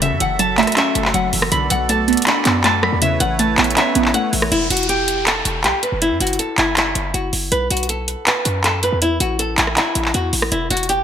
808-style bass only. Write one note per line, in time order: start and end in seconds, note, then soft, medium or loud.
0.00 0.13 F#1 loud
0.11 0.20 F#2 loud
0.20 0.65 F#1 loud
0.95 1.13 F#1 loud
1.14 1.32 F#1 loud
1.33 1.51 F#1 loud
1.52 1.70 B1 loud
1.71 2.16 B1 loud
2.46 2.91 F#2 loud
2.92 3.19 E2 loud
3.20 3.56 A1 loud
3.58 3.76 A1 loud
3.95 4.13 A1 loud
4.33 4.51 A1 loud
4.52 4.70 E1 loud
4.70 5.42 E1 loud
5.45 5.66 E1 loud
5.64 5.73 B1 medium
5.92 6.13 F#1 loud
6.11 6.20 F#2 loud
6.20 6.38 F#1 loud
6.58 6.94 F#1 loud
6.96 7.14 F#1 loud
7.14 7.32 F#1 loud
7.33 7.51 F#1 loud
7.52 7.70 B1 loud
7.70 8.15 B1 loud
8.46 8.91 F#2 loud
8.92 9.19 E2 loud
9.20 9.56 A1 loud
9.58 9.76 A1 loud
9.96 10.13 A1 loud
10.14 10.32 E2 loud
10.33 10.51 A1 loud
10.52 10.70 E1 loud
10.71 11.04 E1 loud